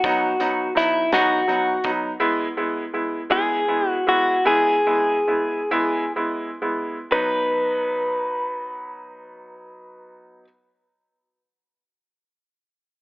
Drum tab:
HH |xxxxxx|------|------|------|
SD |---o--|------|------|------|
BD |o----o|------|------|------|

HH |------|
SD |------|
BD |------|